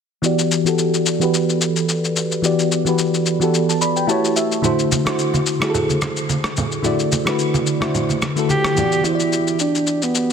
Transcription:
0.22 E3 B3 F#4 G4 D5, shaker
0.39 shaker
0.51 shaker
0.64 E3 B3 F#4 G4 A4, shaker
0.78 shaker
0.94 shaker
1.06 shaker
1.19 E3 B3 F#4 G4 B4, shaker
1.34 shaker
1.49 shaker
1.61 shaker
1.76 shaker
1.89 shaker
2.04 shaker
2.16 shaker
2.32 shaker
2.42 E3 B3 F#4 G4 D5, shaker
2.59 shaker
2.72 shaker
2.85 E3 B3 F#4 G4 B4, shaker
2.98 shaker
3.14 shaker
3.26 shaker
3.40 E3 B3 F#4 G4 A4, shaker
3.54 shaker
3.69 A5, shaker
3.81 D5 B5, shaker
3.96 B4 G5, shaker
4.07 A3 E4 F#4 G4 B4 C#5 A5, shaker
4.25 shaker
4.36 E5, shaker
4.52 shaker
4.62 D3 A3 E4 F#4 C5, low conga, shaker
4.79 shaker
4.92 high conga, shaker
5.05 D3 A3 E4 F#4 C5, cross-stick, shaker
5.19 shaker
5.34 high conga, shaker
5.46 shaker
5.59 D3 A3 E4 F#4 G#4, cross-stick, shaker
5.70 A4
5.74 low conga, shaker
5.89 high conga, shaker
6.02 cross-stick, high conga, shaker
6.16 shaker
6.29 high conga, shaker
6.44 cross-stick, shaker
6.56 high conga, low conga, shaker
6.72 shaker
6.82 D3 A3 E4 F#4 D5, low conga, shaker
6.99 shaker
7.12 high conga, shaker
7.25 D3 A3 E4 F#4 B4, cross-stick, shaker
7.39 shaker
7.54 high conga, shaker
7.66 shaker
7.80 D3 A3 E4 F#4 C5, cross-stick, high conga, shaker
7.94 low conga, shaker
8.09 high conga, shaker
8.22 cross-stick, high conga, shaker
8.35 D3 A3 E4 F#4 A4, shaker
8.49 G4, high conga, shaker
8.64 cross-stick, shaker
8.75 E3 B3 F#4 G4 D5, high conga, low conga, shaker
8.92 shaker
9.01 E3 B3 F#4, shaker
9.05 E4 G4 C5
9.15 D5
9.20 shaker
9.32 shaker
9.47 shaker
9.59 D4, shaker
9.75 shaker
9.87 shaker
10.02 B3, shaker
10.15 shaker

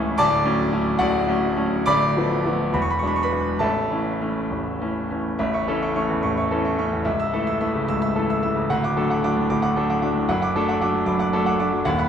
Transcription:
Already playing: C#1 C#2 E3 A3 C#4 A4 E5 A5 C#6 E6
0.18 D1 D2 D5 A5 D6
0.45 F#3 A3 C#4
0.72 F#3 A3 C#4
0.99 D1 D2 F#4 D5 F#5
1.27 F#3 A3 C#4
1.57 F#3 A3 C#4
1.86 D1 D2 D5 B5 D6
2.17 F3 A3 B3
2.46 F3 A3 B3
2.74 E1 E2 B5
2.82 C#6
2.90 B5
2.99 F#3 G#3 C#6
3.03 D4
3.07 B5
3.16 C#6
3.23 B4 B5
3.31 F#3 G#3 D4
3.59 A0 A1 A4 E5 A5
3.91 E3 A3 C#4
4.21 E3 A3 C#4
4.51 A0 A1
4.81 E3 A3 C#4
5.11 E3 A3 C#4
5.39 A0 A1 E5
5.54 E5 C#6
5.68 E3 A3 C#4 A4
5.82 E5 C#6
5.95 E3 A3 C#4 E5 C#6
6.09 E2
6.23 A0 A1 C#6
6.37 E5 C#6
6.51 E3 A3 C#4 A4
6.65 E5 C#6
6.79 E3 A3 C#4 E5 C#6
6.92 E2
7.05 C#1 C#2 E5
7.20 E5 E6
7.33 E3 A3 A4
7.46 E5 E6
7.60 E3 A3 E5 E6
7.74 C#3
7.88 C#1 C#2 E6
8.02 E5 E6
8.16 E3 A3 A4
8.30 E5 E6
8.42 E3 A3 E5 E6
8.55 C#3
8.70 D1 D2 F#5
8.84 F#5 D6
8.97 F#3 A3 D4 A4
9.10 F#5 D6
9.24 F#3 A3 D4 F#5 D6
9.37 A2
9.50 D1 D2 D6
9.62 F#5 D6
9.76 F#3 A3 D4 A4
9.90 F#5 D6
10.02 F#3 A3 D4 F#5 D6
10.14 A2
10.29 F#1 F#2 F#5
10.42 F#5 D6
10.55 F#3 A3 D4 A4
10.68 F#5 D6
10.81 F#3 A3 D4 F#5 D6
10.94 F#3
11.06 F#1 F#2 D6
11.19 F#5 D6
11.33 F#3 A3 D4 A4
11.46 F#5 D6
11.59 F#3 A3 D4 F#5 D6
11.72 F#3
11.85 D#1 D#2 F#5
11.99 F#5 B5

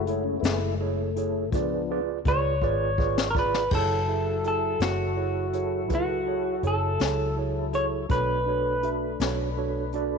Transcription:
Already playing: F#1 G#3 A3
0.06 E4 G#4 A4 C#5, closed hi-hat
0.24 C#4
0.40 F#1 G#3 A3 B3 E4, closed hi-hat
0.44 E4 G#4 A4 E5, snare
0.60 A3
0.74 G#3
0.79 A3 E4 G#4 A4 C#5
1.16 E4 G#4 A4 C#5, closed hi-hat
1.51 C#2 F3 B3 D4 F4 G#4 B4, kick, closed hi-hat
1.55 D5
1.91 F4 G#4 B4 D5
2.25 C#2 F4 G#4 B4 C#5 D5, kick, closed hi-hat
2.62 G#1 F4 G#4 B4 D5, kick
2.98 F4 G#4 B4 D5, kick
3.18 snare
3.30 A#4
3.35 F4 G#4 B4 D5, kick
3.39 B4
3.54 snare
3.71 F#1 F#3 E4 G#4 A4 C#5, kick, crash
3.75 A4
4.08 E4 G#4 A4 E5
4.44 E4 G#4 A4 E5, closed hi-hat
4.80 F#1 E4 F#4 G#4 A4 C#5, snare, closed hi-hat
5.16 E4 G#4 A4 C#5
5.53 E4 G#4 A4 C#5, closed hi-hat
5.88 C#2 E4 G#4 A4 B4, kick, closed hi-hat
5.95 F#4
6.26 E4 G#4 A4 C#5
6.63 F#1 E4 G#4 A4 C#5, closed hi-hat
6.67 A4
7.00 C#2 E4 G#4 A4 C#5, snare, closed hi-hat
7.37 E4 G#4 A4 C#5
7.73 E4 G#4 A4 C#5, closed hi-hat
8.09 B1 A3 D4 F#4 A4 B4 C#5, kick, closed hi-hat
8.46 D4 F#4 A4 C#5
8.83 D4 F#4 A4 E5, closed hi-hat
9.20 B1 D4 F#4 A4 C#5, snare, closed hi-hat
9.58 D4 F#4 A4 C#5
9.93 D4 F#4 A4 D5, closed hi-hat

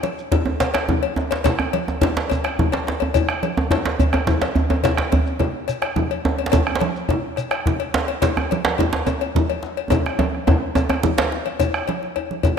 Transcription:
0.03 cowbell, high conga
0.18 shekere
0.31 bombo rim, bombo low, cowbell, djembe slap, high conga, djembe tone, low conga, djembe bass
0.46 djembe tone
0.60 bombo rim, cowbell, djembe slap, shekere
0.74 bombo rim, cowbell, djembe slap
0.89 bombo low, high conga, djembe tone, low conga, djembe bass
1.03 cowbell
1.16 djembe slap, djembe tone
1.31 cowbell, djembe slap
1.44 bombo low, cowbell, djembe slap, high conga, djembe tone, low conga, djembe bass, shekere
1.59 bombo rim, high conga, djembe tone
1.73 cowbell, high conga
1.88 djembe tone, shekere
2.01 bombo rim, bombo low, cowbell, djembe slap, high conga, djembe tone, low conga, djembe bass
2.03 djembe slap
2.17 djembe slap
2.30 bombo rim, cowbell, djembe tone, shekere
2.44 bombo rim, cowbell, djembe slap
2.59 bombo low, djembe tone, high conga, djembe bass, low conga
2.72 cowbell, djembe slap
2.87 djembe slap
3.00 cowbell, djembe tone
3.14 bombo rim, bombo low, cowbell, djembe tone, low conga, djembe bass, shekere
3.29 bombo rim, djembe slap, shekere
3.43 cowbell, high conga, shekere
3.57 djembe tone
3.71 bombo low, cowbell, djembe slap, djembe tone, djembe bass
3.85 bombo rim, djembe slap
3.99 cowbell, djembe slap, high conga, djembe bass, shekere
4.13 bombo rim, cowbell, djembe slap, djembe tone
4.27 bombo low, djembe slap, high conga, djembe tone, low conga, djembe bass, shekere
4.41 bombo rim, cowbell, djembe slap, high conga
4.55 bombo rim, djembe slap, high conga, djembe bass
4.70 bombo rim, cowbell, djembe tone
4.83 bombo low, cowbell, djembe slap, high conga, djembe tone, low conga, djembe bass, shekere
4.98 bombo rim, djembe slap, high conga
5.12 cowbell, high conga, djembe bass
5.26 shekere
5.39 bombo rim, bombo low, cowbell, djembe slap, high conga, low conga, djembe bass
5.68 bombo rim, cowbell, shekere
5.82 bombo rim, cowbell, djembe slap
5.96 bombo low, djembe tone, high conga, djembe bass, low conga
6.11 cowbell
6.25 djembe slap, djembe tone
6.38 cowbell
6.46 djembe slap
6.52 bombo low, cowbell, high conga, djembe tone, low conga, djembe bass, shekere
6.67 bombo rim, djembe slap, high conga
6.75 djembe slap
6.80 cowbell, high conga
6.96 shekere
7.09 bombo rim, bombo low, cowbell, djembe tone, high conga, djembe bass, low conga
7.36 bombo rim, cowbell, shekere
7.51 bombo rim, cowbell, djembe slap
7.66 bombo low, djembe tone, high conga, djembe bass, low conga
7.80 cowbell
7.94 djembe slap
8.08 cowbell
8.22 bombo low, cowbell, djembe slap, high conga, djembe tone, low conga, djembe bass, shekere
8.37 bombo rim, djembe slap, djembe tone, high conga
8.51 cowbell, high conga
8.65 djembe slap, shekere
8.78 bombo rim, bombo low, cowbell, djembe slap, djembe tone, high conga, djembe bass, low conga
8.93 djembe slap
9.07 bombo rim, cowbell, djembe tone, shekere
9.21 cowbell, djembe slap
9.35 bombo low, djembe tone, high conga, djembe bass, low conga
9.50 cowbell
9.63 djembe slap
9.77 cowbell
9.90 bombo low, cowbell, djembe tone, djembe bass, low conga, shekere
10.06 bombo rim, djembe slap
10.19 bombo rim, cowbell, djembe slap, djembe tone, high conga
10.33 bombo rim, djembe slap
10.47 bombo low, cowbell, djembe slap, djembe tone, low conga, djembe bass
10.75 cowbell, djembe tone, high conga, shekere
10.89 bombo rim, cowbell, djembe slap, djembe tone
11.03 bombo low, high conga, djembe tone, low conga, djembe bass, shekere
11.18 bombo rim, cowbell, djembe slap
11.32 djembe slap
11.46 bombo rim, cowbell, high conga
11.59 bombo low, cowbell, djembe tone, low conga, djembe bass, shekere
11.74 bombo rim, shekere
11.88 cowbell, high conga
12.03 djembe slap
12.16 bombo rim, cowbell, djembe tone
12.31 high conga
12.43 bombo low, cowbell, djembe bass, low conga, shekere

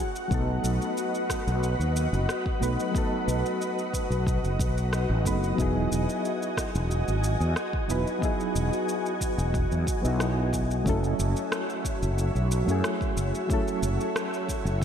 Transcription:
Already playing: F#4 F#5
0.00 B4 D#5
0.16 shaker
0.28 B1 F#3 A3 B3, kick, shaker
0.33 D#4 A4
0.64 B1, shaker
0.82 shaker
0.97 shaker
1.15 shaker
1.30 kick, cross-stick, shaker
1.47 B1, shaker
1.63 shaker
1.80 D#2, shaker
1.96 shaker
2.13 F#1, shaker
2.29 cross-stick, shaker
2.46 kick
2.60 B1 F#3 A3 B3 D#4 B4, shaker
2.80 shaker
2.91 F#3 A3 B3, kick
2.95 D#4 A4, shaker
3.28 B1, shaker
3.46 shaker
3.62 shaker
3.79 shaker
3.94 kick, shaker
4.10 B1, shaker
4.27 kick, shaker
4.44 F#1, shaker
4.59 B1, kick, shaker
4.78 shaker
4.93 cross-stick, shaker
5.10 A1
5.24 F#1 F#3 A3 B3 D#4 B4, kick, shaker
5.44 shaker
5.56 E1 F#3 B3 D#4 F#4 G#5, kick, shaker
5.60 E4 G#4
5.92 E1, shaker
6.09 shaker
6.25 shaker
6.42 shaker
6.57 kick, cross-stick, shaker
6.75 E1, shaker
6.91 shaker
7.08 G#1, shaker
7.24 shaker
7.40 E2, shaker
7.56 cross-stick, shaker
7.73 kick
7.88 E1 F#3 B3 D#4 E4 B4, shaker
8.07 shaker
8.19 F#3 B3 D#4, kick
8.23 E4 G#4, shaker
8.40 shaker
8.55 E1, shaker
8.73 shaker
8.89 shaker
9.06 shaker
9.21 kick, shaker
9.38 E1, shaker
9.54 kick, shaker
9.72 E2, shaker
9.87 kick, shaker
10.02 B1 F#3 B3 D#4, shaker
10.06 E4 F#4
10.20 cross-stick, shaker
10.53 kick, shaker
10.71 shaker
10.83 F#1 F#3 A3 C#4 F#4 C#5 E5, kick, shaker
10.88 E4 A4
11.04 shaker
11.19 F#1, shaker
11.36 shaker
11.52 cross-stick, shaker
11.70 shaker
11.85 kick, shaker
12.03 F#1, shaker
12.18 shaker
12.35 B1, shaker
12.51 shaker
12.65 F#2 F#3 A3 C#4, shaker
12.70 E4 G#4
12.84 cross-stick, shaker
13.01 kick, shaker
13.17 F#1, shaker
13.35 shaker
13.47 F#3 A3 C#4, kick, shaker
13.52 E4 A4
13.68 shaker
13.83 F#1, shaker
14.01 shaker
14.16 cross-stick, shaker
14.34 shaker
14.49 kick, shaker
14.65 F#1, shaker

